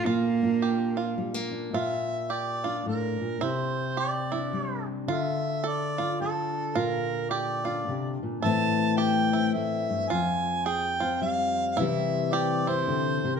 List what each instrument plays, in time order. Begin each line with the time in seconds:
Already playing: steel-string acoustic guitar D4
0.05 steel-string acoustic guitar A#2 F4, cello A#3, five-string banjo F4
0.42 steel-string acoustic guitar A#3 D4 F4
0.62 five-string banjo G4
0.97 five-string banjo F4
1.18 steel-string acoustic guitar G3
1.34 steel-string acoustic guitar A#3
1.51 steel-string acoustic guitar D4
1.73 steel-string acoustic guitar A#2, five-string banjo F4, harmonica E5
2.30 five-string banjo G4, harmonica D5
2.64 steel-string acoustic guitar D4, five-string banjo F4
2.86 steel-string acoustic guitar A2, harmonica A#4
3.21 steel-string acoustic guitar A#2
3.41 steel-string acoustic guitar C3, five-string banjo E4, harmonica C5
3.97 five-string banjo G4, harmonica D5
4.32 steel-string acoustic guitar D4, five-string banjo E4
4.53 steel-string acoustic guitar G3
5.08 steel-string acoustic guitar D3, five-string banjo F4, harmonica E5
5.64 five-string banjo A4, harmonica D5
5.98 five-string banjo F4, steel-string acoustic guitar F4
6.21 steel-string acoustic guitar D4, harmonica A4
6.75 steel-string acoustic guitar A#2, five-string banjo F4, harmonica A#4
7.30 five-string banjo G4, harmonica D5
7.65 steel-string acoustic guitar D4, five-string banjo F4
7.88 steel-string acoustic guitar C3
8.23 steel-string acoustic guitar A#2
8.42 steel-string acoustic guitar A2 E3 A3 C4 E4, five-string banjo E4, harmonica A5
8.97 five-string banjo G4, harmonica G5
9.33 steel-string acoustic guitar C4, five-string banjo E4
9.53 steel-string acoustic guitar A2, harmonica E5
9.90 steel-string acoustic guitar G2
10.10 steel-string acoustic guitar F2, five-string banjo F4, harmonica G#5
10.65 five-string banjo G#4, harmonica G5
11.00 steel-string acoustic guitar C4, five-string banjo F4
11.21 steel-string acoustic guitar G3, harmonica F5
11.77 steel-string acoustic guitar C3 E3 G3 C4, five-string banjo E4, harmonica E5
11.81 steel-string acoustic guitar E4
12.33 five-string banjo G4, harmonica D5
12.67 steel-string acoustic guitar C4, five-string banjo E4, harmonica C5
12.88 steel-string acoustic guitar D3
13.24 steel-string acoustic guitar C3
13.36 harmonica A#4